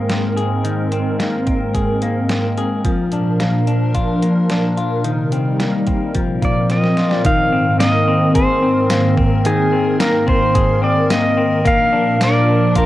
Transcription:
Already playing: analog synth pad G#2 G#3 C4 A#4, clean electric guitar D#3 A#3 G#4
0.09 clean electric guitar C4, snare, closed hi-hat
0.36 clean electric guitar G#4, closed hi-hat
0.64 clean electric guitar D#3, closed hi-hat
0.92 clean electric guitar C4, closed hi-hat
1.19 clean electric guitar A#3, snare, closed hi-hat
1.46 clean electric guitar C4, kick, closed hi-hat
1.74 clean electric guitar G#4, kick, closed hi-hat
2.02 clean electric guitar A#3, closed hi-hat
2.29 clean electric guitar C4, snare, closed hi-hat
2.58 clean electric guitar G#4, closed hi-hat
2.84 analog synth pad A#2 F3 D4 A#4, clean electric guitar F3, kick, closed hi-hat
3.12 clean electric guitar D4, closed hi-hat
3.40 clean electric guitar A#3, snare, closed hi-hat
3.67 clean electric guitar D4, closed hi-hat
3.95 clean electric guitar F4, kick, closed hi-hat
4.22 clean electric guitar A#3, closed hi-hat
4.50 clean electric guitar D4, snare, closed hi-hat
4.77 clean electric guitar F4, closed hi-hat
5.04 analog synth pad C3 G3 D#4, clean electric guitar D#3, closed hi-hat
5.32 clean electric guitar C4, closed hi-hat
5.59 clean electric guitar A#3, snare, closed hi-hat
5.87 clean electric guitar C4, kick, closed hi-hat
6.14 analog synth pad A#2 F3 C4 A#4, clean electric guitar F3, kick, closed hi-hat
6.42 clean electric guitar A#3, pedal steel guitar D5, kick, closed hi-hat
6.70 clean electric guitar C4, pedal steel guitar D#5, snare, closed hi-hat
6.84 snare
6.97 clean electric guitar F4, snare, closed hi-hat
7.11 pedal steel guitar D5, snare
7.25 analog synth pad G#2 D#3 C4 A#4, clean electric guitar D#3, pedal steel guitar F5, kick, closed hi-hat
7.52 clean electric guitar C4
7.79 clean electric guitar A#3, pedal steel guitar D#5, snare, closed hi-hat, tambourine
8.08 clean electric guitar C4
8.35 clean electric guitar G#4, pedal steel guitar C5, kick, closed hi-hat
8.62 clean electric guitar C4
8.90 clean electric guitar A#3, snare, closed hi-hat, tambourine
9.17 clean electric guitar C4, kick
9.45 clean electric guitar D#3, pedal steel guitar G#4, closed hi-hat
9.72 clean electric guitar C4
9.99 clean electric guitar A#3, pedal steel guitar A#4, snare, closed hi-hat, tambourine
10.27 clean electric guitar C4, pedal steel guitar C5, kick
10.55 clean electric guitar G#4, kick, closed hi-hat
10.82 clean electric guitar C4, pedal steel guitar D5
11.10 clean electric guitar A#3, pedal steel guitar D#5, snare, closed hi-hat, tambourine
11.37 clean electric guitar C4
11.64 analog synth pad A#2 F3 D4, clean electric guitar A#3, pedal steel guitar F5, kick, closed hi-hat
11.93 clean electric guitar D4
12.21 clean electric guitar A#3, pedal steel guitar D5, snare, closed hi-hat, tambourine
12.48 clean electric guitar D4
12.76 clean electric guitar F4, pedal steel guitar A#4, kick, closed hi-hat

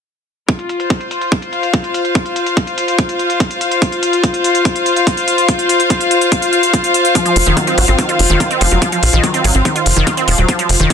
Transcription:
0.49 string section F4, kick, closed hi-hat
0.59 closed hi-hat
0.69 closed hi-hat
0.80 string section C5, closed hi-hat
0.90 kick, closed hi-hat
1.01 closed hi-hat
1.11 closed hi-hat
1.21 closed hi-hat
1.32 kick, closed hi-hat
1.42 closed hi-hat
1.49 string section F5
1.53 closed hi-hat
1.63 closed hi-hat
1.74 kick, closed hi-hat
1.84 closed hi-hat
1.94 closed hi-hat
2.05 closed hi-hat
2.15 kick, closed hi-hat
2.26 closed hi-hat
2.36 closed hi-hat
2.46 closed hi-hat
2.57 kick, closed hi-hat
2.67 closed hi-hat
2.78 closed hi-hat
2.88 closed hi-hat
2.99 kick, closed hi-hat
3.09 closed hi-hat
3.19 closed hi-hat
3.30 closed hi-hat
3.40 kick, closed hi-hat
3.51 closed hi-hat
3.61 closed hi-hat
3.71 closed hi-hat
3.82 kick, closed hi-hat
3.92 closed hi-hat
4.03 closed hi-hat
4.13 closed hi-hat
4.24 kick, closed hi-hat
4.34 closed hi-hat
4.44 closed hi-hat
4.55 closed hi-hat
4.65 kick, closed hi-hat
4.76 closed hi-hat
4.86 closed hi-hat
4.96 closed hi-hat
5.07 kick, closed hi-hat
5.17 closed hi-hat
5.28 closed hi-hat
5.38 closed hi-hat
5.49 kick, closed hi-hat
5.59 closed hi-hat
5.69 closed hi-hat
5.80 closed hi-hat
5.90 kick, closed hi-hat
6.01 closed hi-hat
6.11 closed hi-hat
6.21 closed hi-hat
6.32 kick, closed hi-hat
6.42 closed hi-hat
6.53 closed hi-hat
6.63 closed hi-hat
6.74 kick, closed hi-hat
6.84 closed hi-hat
6.94 closed hi-hat
7.05 closed hi-hat
7.15 synth arpeggio sound F3, kick, closed hi-hat
7.26 synth arpeggio sound F3, closed hi-hat
7.36 analog synth bass F1, open hi-hat
7.46 analog synth bass F1, synth arpeggio sound D#3, closed hi-hat
7.57 synth arpeggio sound F#3, kick, closed hi-hat
7.67 synth arpeggio sound C4, closed hi-hat
7.78 analog synth bass G#1, synth arpeggio sound F#3, open hi-hat
7.88 analog synth bass G#1, synth arpeggio sound C4, closed hi-hat
7.98 synth arpeggio sound D#3, kick, closed hi-hat
8.09 synth arpeggio sound F4, closed hi-hat
8.19 analog synth bass F1, open hi-hat
8.30 analog synth bass F1, synth arpeggio sound D#3, closed hi-hat
8.40 synth arpeggio sound F4, kick, closed hi-hat
8.51 synth arpeggio sound C4, closed hi-hat
8.61 analog synth bass F1, synth arpeggio sound F3, open hi-hat
8.71 analog synth bass F1, synth arpeggio sound F#3, closed hi-hat
8.82 synth arpeggio sound F3, kick, closed hi-hat
8.92 synth arpeggio sound F3, closed hi-hat
9.03 analog synth bass A#1, open hi-hat
9.13 analog synth bass A#1, synth arpeggio sound D#3, closed hi-hat
9.23 synth arpeggio sound F#3, kick, closed hi-hat
9.34 synth arpeggio sound C4, closed hi-hat
9.44 analog synth bass G#1, synth arpeggio sound F#3, open hi-hat
9.55 analog synth bass G#1, synth arpeggio sound C4, closed hi-hat
9.65 synth arpeggio sound D#3, kick, closed hi-hat
9.76 synth arpeggio sound F4, closed hi-hat
9.86 analog synth bass F1, open hi-hat
9.96 analog synth bass F1, synth arpeggio sound D#3, closed hi-hat
10.07 synth arpeggio sound F4, kick, closed hi-hat
10.17 synth arpeggio sound C4, closed hi-hat
10.28 analog synth bass D#1, synth arpeggio sound F3, open hi-hat
10.38 analog synth bass D#1, synth arpeggio sound F#3, closed hi-hat
10.48 synth arpeggio sound F3, kick, closed hi-hat
10.59 synth arpeggio sound F3, closed hi-hat
10.69 analog synth bass F1, open hi-hat
10.80 analog synth bass F1, synth arpeggio sound D#3, closed hi-hat
10.90 synth arpeggio sound F#3, kick, closed hi-hat

